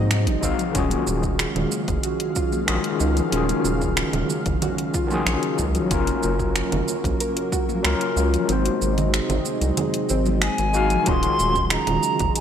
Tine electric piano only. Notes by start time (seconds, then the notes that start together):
Already playing: G#3 D#4 F#4 C5
0.41 G#3 D#4 F#4 F5
0.71 D#3 C#4 F4
0.77 F#4 G#4
2.66 D#3 C#4 F4 F#4 G#4
3.29 D#3 C#4 F4
3.34 F#4 G#4
5.07 D#3 C#4 F4
5.12 F#4 G#4
5.86 F#3 C#4
5.91 F4 A#4
7.83 F#3 C#4 F4 A#4
8.45 G#3 D#4
8.50 F#4 C5
10.73 G#3 D#4 F#4 F5
11.03 D#3 C#4 F4
11.09 F#4 G#4